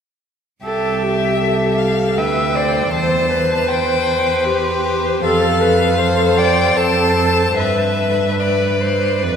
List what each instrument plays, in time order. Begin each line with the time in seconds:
0.64 cello C2, violin G4 E5, viola A4
1.02 viola G4
1.41 violin A4
1.78 violin F5
2.17 cello D2, violin B4 G5, viola E5
2.55 violin C5, viola D5
2.92 cello E2, violin C5 A5, viola C5
3.30 viola B4
3.68 violin B4 G5, viola C5
4.44 viola G4, violin C5
5.25 cello F2, viola A4, violin A4 F5
5.61 viola B4
5.98 violin A4, viola C5
6.38 violin D5 G5
6.77 cello F2, viola A4, violin C5 A5
7.57 cello G2, viola B4, violin B4 E5
8.40 violin B4 D5
8.80 violin C5
9.22 cello F2, violin B4